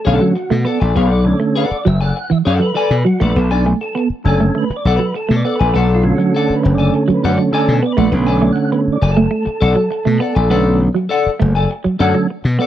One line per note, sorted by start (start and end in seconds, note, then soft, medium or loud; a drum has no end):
0.00 0.23 A4 medium
0.05 0.19 B1 medium
0.05 0.33 D3 medium
0.05 0.33 A3 soft
0.05 0.34 C#4 medium
0.05 0.26 A4 medium
0.05 0.20 D5 medium
0.05 0.19 F#5 loud
0.20 0.33 F#3 medium
0.20 0.68 F#4 medium
0.20 muted clean electric guitar stroke medium
0.35 muted clean electric guitar stroke soft
0.50 0.63 B2 medium
0.50 0.63 A3 medium
0.50 muted clean electric guitar stroke medium
0.65 0.77 B3 medium
0.65 0.81 A4 medium
0.65 0.97 A4 medium
0.65 0.80 D5 medium
0.65 0.80 F#5 medium
0.80 0.93 A#1 medium
0.80 0.94 A4 soft
0.80 0.95 D5 soft
0.80 0.96 G#5 medium
0.96 1.33 B1 loud
0.96 1.08 B3 medium
0.96 1.08 G#4 medium
0.96 1.11 B4 loud
0.96 1.07 C#5 medium
0.96 1.08 F5 medium
1.07 1.23 A4 medium
1.07 1.24 D5 medium
1.07 1.24 F#5 medium
1.12 1.39 D5 medium
1.25 1.65 D3 medium
1.25 1.66 A3 medium
1.25 1.66 C#4 medium
1.25 muted clean electric guitar stroke soft
1.40 1.52 A3 medium
1.40 muted clean electric guitar stroke soft
1.55 1.76 A4 medium
1.55 1.71 B4 loud
1.55 1.76 D5 medium
1.55 1.77 F#5 medium
1.71 1.86 D5 medium
1.71 muted slap bass stroke soft
1.85 2.11 F#1 medium
1.85 1.97 F#3 medium
1.85 2.00 E5 loud
1.85 muted clean electric guitar stroke soft
2.01 2.15 A4 soft
2.01 2.16 D5 medium
2.01 2.32 F#5 medium
2.01 2.16 G#5 medium
2.16 muted clean electric guitar stroke soft
2.30 2.42 E3 medium
2.30 2.38 E5 medium
2.30 muted clean electric guitar stroke soft
2.30 muted slap bass stroke soft
2.45 2.58 F#2 medium
2.45 2.66 A4 loud
2.45 2.60 D5 loud
2.45 2.53 D5 medium
2.45 2.59 F#5 loud
2.45 muted clean electric guitar stroke soft
2.60 2.72 F#3 medium
2.60 3.07 B4 loud
2.60 muted clean electric guitar stroke soft
2.74 2.95 A4 medium
2.74 2.95 D5 loud
2.74 2.95 G#5 loud
2.74 muted clean electric guitar stroke soft
2.91 3.03 B2 medium
3.05 3.17 F#3 medium
3.05 3.21 F#4 loud
3.05 muted clean electric guitar stroke soft
3.20 3.33 A#1 medium
3.20 3.32 A3 medium
3.20 3.35 A4 medium
3.20 3.36 B4 medium
3.20 3.36 D5 medium
3.20 3.35 F#5 medium
3.36 3.72 B1 medium
3.36 3.48 B3 medium
3.36 3.51 A4 medium
3.36 muted clean electric guitar stroke soft
3.51 3.65 D4 medium
3.51 3.66 A4 medium
3.51 3.66 D5 medium
3.51 3.67 G#5 medium
3.51 muted clean electric guitar stroke soft
3.66 3.78 A3 medium
3.66 muted clean electric guitar stroke soft
3.81 4.08 A4 medium
3.81 muted clean electric guitar stroke soft
3.95 4.07 B3 medium
3.95 muted clean electric guitar stroke soft
4.10 muted slap bass stroke soft
4.24 4.49 F#1 medium
4.24 4.64 D3 medium
4.24 4.65 A3 medium
4.24 4.65 C#4 medium
4.24 4.41 A4 medium
4.24 4.41 D5 medium
4.24 4.41 G#5 medium
4.24 muted clean electric guitar stroke soft
4.40 4.52 A3 medium
4.40 muted clean electric guitar stroke soft
4.55 4.67 A3 medium
4.55 4.77 B4 medium
4.70 muted slap bass stroke soft
4.70 muted clean electric guitar stroke soft
4.76 4.96 D5 medium
4.85 4.97 B1 medium
4.85 5.05 A4 medium
4.85 4.99 D5 medium
4.85 4.98 F#5 loud
4.96 5.11 F#3 medium
4.96 5.16 B4 medium
4.96 muted clean electric guitar stroke soft
5.15 5.36 A4 medium
5.15 muted clean electric guitar stroke soft
5.29 5.42 B2 medium
5.29 5.41 A3 medium
5.29 muted clean electric guitar stroke soft
5.36 5.56 D5 medium
5.45 5.56 B3 medium
5.45 5.60 A4 medium
5.45 5.59 D5 medium
5.45 5.59 F#5 medium
5.56 5.75 B4 medium
5.60 5.72 A#1 medium
5.60 5.73 A4 medium
5.60 5.74 D5 medium
5.60 5.75 G#5 medium
5.74 6.11 B1 loud
5.74 5.86 B3 medium
5.74 6.02 A4 medium
5.74 5.95 A4 medium
5.74 6.02 D5 medium
5.74 6.03 F#5 medium
5.95 6.15 F4 medium
6.03 7.51 D3 medium
6.03 7.52 A3 soft
6.03 7.52 C#4 medium
6.03 muted clean electric guitar stroke medium
6.15 6.30 F#3 medium
6.15 6.35 F#4 medium
6.20 muted clean electric guitar stroke soft
6.35 6.54 A4 medium
6.35 6.55 A4 medium
6.35 6.54 D5 medium
6.35 6.54 F#5 loud
6.50 muted slap bass stroke soft
6.55 6.73 B4 medium
6.63 6.89 F#1 medium
6.63 6.75 A3 medium
6.63 muted clean electric guitar stroke soft
6.75 6.95 D5 medium
6.75 6.94 G#5 medium
6.79 6.93 A4 medium
6.79 6.93 D5 medium
6.94 7.03 A4 loud
6.94 muted clean electric guitar stroke soft
7.08 7.20 F#3 medium
7.08 muted clean electric guitar stroke soft
7.08 muted slap bass stroke soft
7.14 7.32 B4 medium
7.23 7.36 F#2 medium
7.23 7.43 A4 medium
7.23 7.39 D5 loud
7.23 7.37 F#5 loud
7.23 muted clean electric guitar stroke soft
7.34 7.43 D5 medium
7.38 7.50 F#3 medium
7.38 muted clean electric guitar stroke soft
7.52 7.79 D3 soft
7.52 7.80 A3 soft
7.52 7.80 C#4 medium
7.52 7.72 A4 medium
7.52 7.62 D5 medium
7.52 7.73 D5 loud
7.52 7.73 G#5 loud
7.52 muted clean electric guitar stroke soft
7.68 7.80 B2 medium
7.73 7.85 A4 medium
7.83 7.94 B3 medium
7.83 7.93 D5 medium
7.83 muted clean electric guitar stroke soft
7.92 8.33 B4 medium
7.97 8.10 A#1 medium
7.97 8.09 A3 medium
7.97 8.12 A4 medium
7.97 8.12 D5 medium
7.97 8.13 F#5 medium
8.11 8.49 B1 loud
8.11 8.97 D3 medium
8.11 8.98 A3 medium
8.11 8.24 B3 medium
8.11 8.98 C#4 medium
8.11 muted clean electric guitar stroke soft
8.27 8.40 A4 medium
8.27 8.41 D5 medium
8.27 8.42 G#5 medium
8.27 muted clean electric guitar stroke soft
8.32 8.53 D5 loud
8.41 8.54 A3 medium
8.41 muted clean electric guitar stroke soft
8.52 8.71 F#5 loud
8.52 muted clean electric guitar stroke medium
8.72 8.84 B3 medium
8.72 8.81 B4 medium
8.72 muted clean electric guitar stroke soft
8.88 muted slap bass stroke soft
8.92 9.11 D5 medium
9.02 9.26 F#1 medium
9.02 9.17 A4 medium
9.02 9.16 D5 medium
9.02 9.16 G#5 medium
9.02 muted clean electric guitar stroke soft
9.11 10.57 A4 loud
9.17 9.29 A3 medium
9.17 muted clean electric guitar stroke soft
9.31 9.43 A3 medium
9.46 muted clean electric guitar stroke medium
9.46 muted slap bass stroke soft
9.61 9.74 B1 medium
9.61 9.80 A4 medium
9.61 9.75 D5 loud
9.61 9.74 F#5 loud
9.75 9.88 F#3 medium
9.75 muted clean electric guitar stroke soft
9.90 muted clean electric guitar stroke soft
10.05 10.19 B2 medium
10.05 10.17 A3 medium
10.05 muted clean electric guitar stroke soft
10.20 10.32 B3 medium
10.20 10.36 A4 medium
10.20 10.35 D5 medium
10.20 10.35 F#5 medium
10.35 10.51 A#1 medium
10.35 10.49 A4 soft
10.35 10.50 D5 medium
10.35 10.51 G#5 medium
10.50 10.87 B1 loud
10.50 10.90 D3 medium
10.50 10.91 A3 medium
10.50 10.63 B3 medium
10.50 10.91 C#4 medium
10.50 10.78 A4 medium
10.50 10.78 D5 medium
10.50 10.79 F#5 loud
10.81 muted clean electric guitar stroke soft
10.95 11.07 F#3 medium
10.95 muted clean electric guitar stroke soft
11.09 11.29 A4 medium
11.09 11.30 D5 loud
11.09 11.30 F#5 loud
11.26 muted slap bass stroke medium
11.40 11.65 F#1 medium
11.40 11.52 A3 medium
11.40 muted clean electric guitar stroke soft
11.55 11.69 A4 medium
11.55 11.69 D5 medium
11.55 11.70 G#5 medium
11.70 muted clean electric guitar stroke soft
11.84 11.96 F#3 medium
11.84 muted clean electric guitar stroke soft
11.84 muted slap bass stroke soft
11.99 12.12 F#2 medium
11.99 12.27 D3 medium
11.99 12.27 A3 soft
11.99 12.28 C#4 medium
11.99 12.19 A4 medium
11.99 12.15 D5 medium
11.99 12.13 F#5 loud
11.99 muted clean electric guitar stroke soft
12.14 12.26 F#3 medium
12.14 muted clean electric guitar stroke soft
12.30 muted clean electric guitar stroke soft
12.44 12.57 B2 medium
12.44 muted clean electric guitar stroke soft
12.59 12.67 B3 medium
12.59 12.67 A4 medium
12.59 12.67 D5 medium
12.59 12.67 F#5 medium